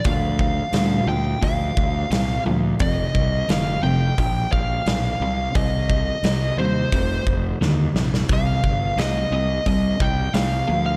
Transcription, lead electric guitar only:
X:1
M:4/4
L:1/16
Q:1/4=87
K:Cdor
V:1 name="Lead electric guitar"
f2 f4 g2 f6 z2 | e4 f2 g4 f6 | e6 c4 z6 | f4 e2 e2 e2 g2 f3 f |]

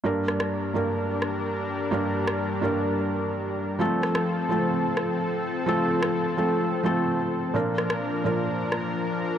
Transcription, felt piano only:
X:1
M:4/4
L:1/8
Q:1/4=128
K:Gm
V:1 name="Felt piano"
[G,,G,B,DB]3 [G,,G,B,DB]4- [G,,G,B,DB] | [G,,G,B,DB]3 [G,,G,B,DB]4- [G,,G,B,DB] | [F,A,CA]3 [F,A,CA]4- [F,A,CA] | [F,A,CA]3 [F,A,CA]2 [F,A,CA]3 |
[B,,F,B,DB]3 [B,,F,B,DB]4- [B,,F,B,DB] |]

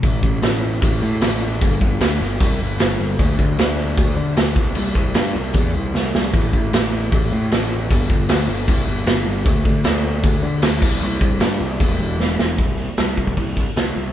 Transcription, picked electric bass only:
X:1
M:4/4
L:1/8
Q:1/4=153
K:Gmix
V:1 name="Picked electric bass" clef=bass
A,,, A,,, A,,,2 A,,, A,, A,,,2 | G,,, G,,, D,, G,,, C,, G,,, G,,, G,,, | D,, D,, D,,2 D,, D, D,, C,, | C,, C,, G,, C,, E,, C,, C,, C,, |
A,,, A,,, A,,,2 A,,, A,, A,,,2 | G,,, G,,, D,, G,,, C,, G,,, G,,, G,,, | D,, D,, D,,2 D,, D, D,, C,, | C,, C,, G,, C,, E,,, E,,, E,,, E,,, |
[K:C] C,,2 C,, C,, C,,2 C,, C,, |]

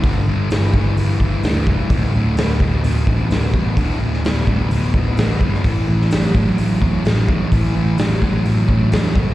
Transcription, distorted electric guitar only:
X:1
M:4/4
L:1/8
Q:1/4=128
K:D
V:1 name="Distorted electric guitar" clef=bass
[G,,D,] [G,,D,] [G,,E,] [G,,E,] [G,,E,] [G,,E,] [G,,E,] [G,,E,] | [D,,A,,] [D,,A,,] [D,,B,,] [D,,B,,] [D,,B,,] [D,,B,,] [D,,B,,] [D,,B,,] | [D,,A,,] [D,,A,,] [D,,B,,] [D,,B,,] [D,,B,,] [D,,B,,] [D,,B,,] [D,,B,,] | [A,,E,] [A,,E,] [A,,F,] [A,,F,] [A,,F,] [A,,F,] [A,,F,] [A,,F,] |
[A,,E,] [A,,E,] [A,,F,] [A,,F,] [A,,F,] [A,,F,] [A,,F,] [A,,F,] |]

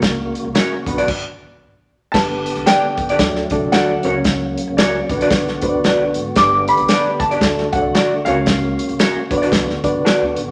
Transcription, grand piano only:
X:1
M:4/4
L:1/8
Q:"Swing" 1/4=114
K:G
V:1 name="Grand piano"
d6 z2 | a2 g4 f2- | f2 d4- d z | d' b2 a2 f2 =f- |
=f3 z4 z |]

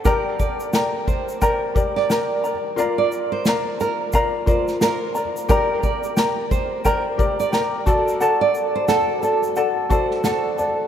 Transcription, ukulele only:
X:1
M:4/4
L:1/8
Q:"Swing 16ths" 1/4=88
K:Gm
V:1 name="Ukulele"
[Bdgb]2 [Bdgb]2 [Bdgb]2 [Bdgb] [Bdb] | [Bdfb]2 [Bdfb] [Bdb] [Bdfb]2 [Bdfb] [Bdb] | [Bdgb]2 [Bdgb]2 [Bdgb]2 [Bdgb] [Ada] | [Ad^fa]2 [Adfa] [Ada] [Adfa]2 [Adfa] [Ada] |]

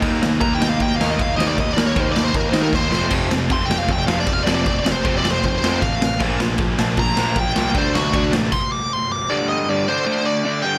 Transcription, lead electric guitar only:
X:1
M:4/4
L:1/8
Q:1/4=156
K:Fmix
V:1 name="Lead electric guitar"
z2 (3b g f (3g f e (3f e d | (3e d ^c (3=c d c (3B c B c2 | z2 (3c' g f (3g f d (3f d d | (3d d c (3c d c (3c c c f2 |
z4 b2 g g | c ^F2 z c' d' c' d' | [K:Dphr] d e d c2 d2 g |]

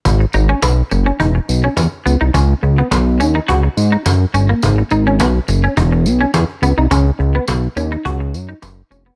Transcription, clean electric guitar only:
X:1
M:4/4
L:1/16
Q:1/4=105
K:G#m
V:1 name="Clean electric guitar"
z2 D C B, z2 C D z2 C z2 B, D | C z2 B, z2 C D F z2 D z2 C A, | z2 D C B, z2 C D z2 C z2 B, D | C z2 B, z2 C D F z2 D z2 C B, |]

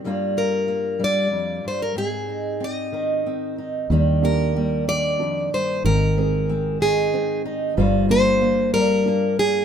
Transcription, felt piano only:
X:1
M:3/4
L:1/8
Q:1/4=93
K:Eb
V:1 name="Felt piano"
z6 | z6 | E, [B,DG] B,2 D2 | E, [A,C] A,2 C2 |
F, [B,D] B,2 D2 |]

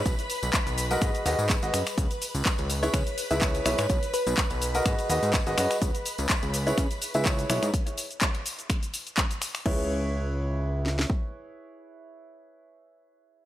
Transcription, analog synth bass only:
X:1
M:4/4
L:1/16
Q:"Swing 16ths" 1/4=125
K:C#m
V:1 name="Analog synth bass" clef=bass
B,,, z2 B,,, z B,,,3 G,, z D,, G,, z G,,, F,, z | C,, z2 C,, z C,,3 C, z2 C,,3 B,,, G,, | B,,, z2 B,,, z B,,,3 G,, z D,, G,, z G,,, F,, z | C,, z2 C,, z C,,3 C, z2 C,,3 B,,, G,, |
z16 | C,,12 z4 | z16 |]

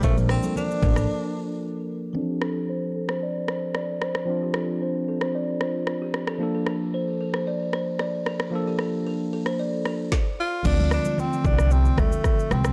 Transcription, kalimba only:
X:1
M:4/4
L:1/16
Q:1/4=113
K:Dm
V:1 name="Kalimba"
c z B A B z B A z8 | z G A z c z A c d z c z d z c z | z G A z c z A c d z c z2 G z A | z A B z c z B c d z c z d z B z |
z G A z B z A c d z B z4 z | z16 |]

